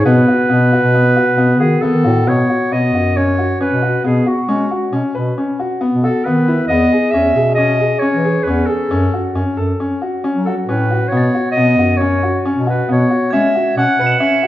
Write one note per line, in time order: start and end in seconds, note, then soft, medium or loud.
0.05 0.24 B2 medium
0.05 0.25 B3 medium
0.05 1.56 B4 medium
0.28 0.47 F#4 medium
0.49 0.77 B2 medium
0.49 0.69 B3 medium
0.73 0.91 F#4 medium
0.82 1.19 B2 medium
0.95 1.14 B3 medium
1.16 1.36 F#4 medium
1.28 1.62 B2 medium
1.38 1.57 B3 medium
1.59 1.79 D#3 medium
1.59 1.80 F#4 medium
1.59 1.83 G#4 medium
1.81 2.02 B3 medium
1.81 2.30 A4 medium
1.94 2.03 D#3 medium
2.05 2.23 A2 medium
2.05 2.24 F#4 medium
2.27 2.45 B2 medium
2.27 2.46 B3 medium
2.27 2.74 C#5 medium
2.50 2.69 F#4 medium
2.71 2.89 B2 medium
2.71 2.91 B3 medium
2.71 3.18 D#5 medium
2.93 3.57 F#2 medium
2.93 3.13 F#4 medium
3.16 3.35 C#4 medium
3.16 3.60 C#5 medium
3.39 3.57 F#4 medium
3.60 3.79 C#4 medium
3.60 4.01 B4 medium
3.71 3.98 B2 medium
3.82 4.01 F#4 medium
4.04 4.23 B2 medium
4.04 4.23 B3 medium
4.04 4.29 G#4 medium
4.26 4.46 F#4 medium
4.26 4.94 F#4 medium
4.49 4.67 G#3 medium
4.49 4.68 C#4 medium
4.71 4.90 F#4 medium
4.93 5.02 B2 medium
4.93 5.12 C#4 medium
5.15 5.33 B2 medium
5.15 5.34 B4 medium
5.38 5.57 C#4 medium
5.60 5.79 F#4 medium
5.81 6.00 B3 medium
5.93 6.11 B2 medium
6.03 6.23 F#4 medium
6.03 6.26 A4 medium
6.25 6.61 D#3 medium
6.25 6.45 B3 medium
6.25 6.67 B4 medium
6.48 6.67 E4 medium
6.67 6.87 E2 medium
6.67 6.89 B3 medium
6.67 7.12 D#5 medium
6.92 7.11 G#4 medium
7.11 7.32 E2 medium
7.11 7.33 C#4 medium
7.11 7.54 E5 medium
7.35 7.99 B2 medium
7.35 7.55 G#4 medium
7.55 7.77 C#4 medium
7.55 8.01 D#5 medium
7.80 7.99 G#4 medium
7.99 8.21 C#4 medium
7.99 8.45 C#5 medium
8.14 8.41 E3 medium
8.24 8.44 G#4 medium
8.43 8.64 E2 medium
8.43 8.68 B4 medium
8.47 8.66 C#4 medium
8.66 8.88 G#4 medium
8.66 9.34 A4 medium
8.91 9.09 F#2 medium
8.91 9.10 C#4 medium
9.14 9.32 F#4 medium
9.35 9.44 F#2 medium
9.35 9.54 C#4 medium
9.56 9.75 F#2 medium
9.56 9.76 A4 medium
9.80 9.99 C#4 medium
10.02 10.21 F#4 medium
10.24 10.43 C#4 medium
10.34 10.53 F#3 medium
10.45 10.65 F#4 medium
10.45 10.55 A4 medium
10.66 11.04 A2 medium
10.66 10.87 C#4 medium
10.66 11.10 B4 medium
10.91 11.09 F#4 medium
11.08 11.29 B2 medium
11.08 11.31 B3 medium
11.08 11.51 C#5 medium
11.17 11.91 A6 soft
11.35 11.53 F#4 medium
11.52 11.74 B2 medium
11.52 11.99 D#5 medium
11.57 11.76 B3 medium
11.77 12.41 F#2 medium
11.77 11.98 F#4 medium
11.97 12.20 C#4 medium
11.97 12.43 C#5 medium
12.23 12.42 F#4 medium
12.45 12.64 C#4 medium
12.55 12.83 B2 medium
12.67 12.86 F#4 medium
12.67 12.88 B4 medium
12.88 13.07 B2 medium
12.88 13.08 B3 medium
12.88 13.31 C#5 medium
13.11 13.30 F#4 medium
13.31 13.51 G#3 medium
13.31 13.52 C#4 medium
13.31 13.74 E5 medium
13.31 14.05 G#6 soft
13.55 13.74 F#4 medium
13.77 13.86 B2 medium
13.77 13.96 C#4 medium
13.77 14.18 F#5 medium
13.99 14.17 B2 medium
13.99 14.18 B4 medium
13.99 14.47 C#7 medium
14.06 14.47 E7 soft
14.12 14.47 F#7 soft
14.20 14.40 C#4 medium
14.20 14.47 E5 medium
14.43 14.47 F#4 medium